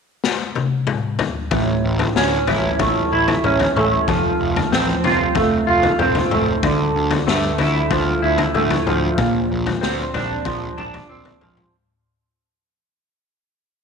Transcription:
0.24 snare
0.55 high tom
0.87 mid tom
1.19 floor tom
1.51 A1 A2, kick, floor tom
1.84 A1
1.99 floor tom
2.16 D2 C#4, snare
2.47 A1 E4, floor tom
2.79 A1 A3, kick, floor tom
3.12 A1 E4
3.28 floor tom
3.44 A1 C#4, mid tom
3.60 floor tom
3.76 A1 A3, mid tom
4.08 F1 F3, kick, floor tom
4.39 F1
4.56 floor tom
4.72 A1 C4, snare
5.04 F1 F4, floor tom
5.35 F1 A3, kick, floor tom
5.67 F1 F4
5.83 floor tom
5.99 F1 C4, mid tom
6.15 floor tom
6.31 F1 A3, mid tom
6.63 D2 D3, kick, floor tom
6.95 D2
7.11 floor tom
7.27 G2 A3, snare
7.58 D2 E4, floor tom
7.91 D2 F3, kick, floor tom
8.22 D2 E4
8.38 floor tom
8.54 D2 A3, mid tom
8.70 floor tom
8.86 D2 F3, mid tom
9.18 A#1 A#2, kick, floor tom
9.51 A#1
9.66 floor tom
9.81 D2 C4, snare
10.14 A#1 D4, floor tom
10.45 A#1 F3, kick, floor tom
10.78 A#1 D4, mid tom
10.94 floor tom
11.09 A#1 C4
11.25 floor tom
11.41 A#1 F3, mid tom
11.57 mid tom

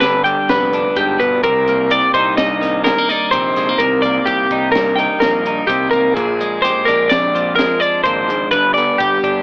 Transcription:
Already playing: G1 G2 G3 B3 D4 G4
0.01 D3 B4, snare, closed hi-hat
0.24 G3 G5, closed hi-hat
0.49 F1 B3 B4, snare, closed hi-hat
0.73 D4, closed hi-hat
0.96 G1 G#2 G4, kick, closed hi-hat
1.19 G1 B2 B4, kick, closed hi-hat
1.44 C2 C3 A#4, kick, closed hi-hat
1.68 A#3, closed hi-hat
1.91 G4 D5, closed hi-hat
2.14 C2 D#4 C5, kick, closed hi-hat
2.37 G2 D#5, snare, closed hi-hat
2.61 D#3, snare, closed hi-hat
2.84 G#3 A#4, snare, closed hi-hat
2.98 A#3
3.09 D#4 D5, snare, closed hi-hat
3.31 A#1 C3 C5, kick, closed hi-hat
3.56 G#3, snare, closed hi-hat
3.69 A#3
3.78 C2 C3 A#4, kick, closed hi-hat
4.02 A#3 D5, closed hi-hat
4.26 C2 G4, kick, snare, closed hi-hat
4.51 C2 D#4, kick, closed hi-hat
4.72 A#4, snare, closed hi-hat
4.76 G2
4.96 D#3 G5, closed hi-hat
5.20 A#1 A#3 A#4, snare, closed hi-hat
5.45 D#4, closed hi-hat
5.67 C2 C3 G4, kick, closed hi-hat
5.90 C2 A#3 A#4, kick, closed hi-hat
6.14 A#1 A#2 G#4, kick, closed hi-hat
6.41 G#3, closed hi-hat
6.62 G4 C5, snare, closed hi-hat
6.85 A#1 D4 A#4, kick, snare, closed hi-hat
7.10 F2 D5, snare, closed hi-hat
7.35 F3, closed hi-hat
7.56 G#3 A#4, snare, closed hi-hat
7.80 D4 D5, closed hi-hat
8.04 G#1 A#2 C5, kick, closed hi-hat
8.28 G#2, closed hi-hat
8.51 G1 G2 B4, kick, closed hi-hat
8.74 D5, closed hi-hat
8.78 B3
8.98 G1 G4, kick, closed hi-hat
9.23 G1 D4, kick, closed hi-hat

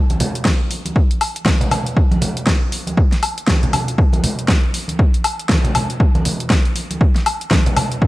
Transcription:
0.10 closed hi-hat, high conga
0.20 open hi-hat, low conga
0.35 closed hi-hat
0.45 kick, snare
0.71 open hi-hat
0.85 closed hi-hat, high conga
0.96 kick
1.11 closed hi-hat
1.21 open hi-hat, high woodblock
1.36 closed hi-hat
1.45 kick, snare, high conga
1.61 closed hi-hat, low conga
1.71 open hi-hat, low conga, high woodblock
1.86 closed hi-hat
1.97 kick
2.11 closed hi-hat, high conga
2.21 open hi-hat, low conga
2.37 closed hi-hat
2.47 kick, snare
2.72 open hi-hat
2.87 closed hi-hat, high conga
2.97 kick
3.12 snare, closed hi-hat
3.23 open hi-hat, high woodblock
3.38 closed hi-hat
3.47 kick, snare, high conga
3.63 closed hi-hat, low conga
3.73 open hi-hat, low conga, high woodblock
3.88 closed hi-hat
3.98 kick
4.13 closed hi-hat, high conga
4.24 open hi-hat, low conga
4.39 closed hi-hat
4.48 kick, snare
4.74 open hi-hat
4.88 closed hi-hat, high conga
4.99 kick
5.14 closed hi-hat
5.24 open hi-hat, high woodblock
5.39 closed hi-hat
5.49 kick, snare, high conga
5.64 closed hi-hat, low conga
5.75 open hi-hat, low conga, high woodblock
5.90 closed hi-hat
6.00 kick
6.15 closed hi-hat, high conga
6.25 open hi-hat, low conga
6.40 closed hi-hat
6.50 kick, snare
6.66 closed hi-hat
6.76 open hi-hat
6.91 closed hi-hat, high conga
7.01 kick
7.15 snare, closed hi-hat
7.26 open hi-hat, high woodblock
7.41 closed hi-hat
7.51 kick, snare, high conga
7.66 closed hi-hat, low conga
7.76 open hi-hat, low conga, high woodblock
7.92 closed hi-hat
8.02 kick

